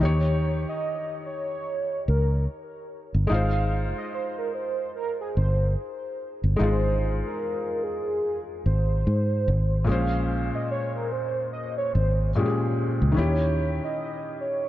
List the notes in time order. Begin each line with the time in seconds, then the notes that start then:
0.00 D#2 D#3 D#4 G4 C#5
0.05 C#5
0.69 D#5
1.26 C#5
2.08 C#2 A#4
3.15 G1
3.27 G#3 D#4
3.31 G#1 F4 C5 F5
3.98 D#5
4.14 C5
4.38 A#4
4.55 C5
4.96 A#4
5.21 G#4
5.37 G1 C5
6.44 G1
6.56 G#3 D#4
6.60 G#1 F4 G#4 C5
7.26 A#4
7.84 G#4
8.66 G#1 C5
9.07 G#2
9.48 G#1
9.85 A#2 G#3
9.89 A#1 C#4 C5 F5
10.55 D#5
10.71 C#5
10.96 A#4
11.12 C5
11.53 D#5
11.78 C#5
11.94 G#1 C5
12.35 A#2 G#3 C#4 G4
12.45 G#4
13.02 C#2
13.12 D#3 C#4
13.16 D#2 E4 G4 C#5
13.84 D#5
14.41 C#5